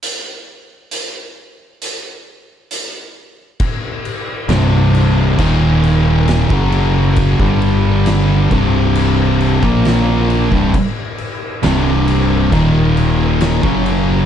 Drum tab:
CC |----------------|x-x-x-x-x-x-x-x-|x-x-x-x-x-x-x-x-|x-x-x-x-x-x-x-x-|
HH |x---x---x---x---|----------------|----------------|----------------|
SD |----------------|----o-------o---|----o-------o---|----o-------o---|
BD |----------------|o-------o----o--|oo----o----o---o|o-------o----o--|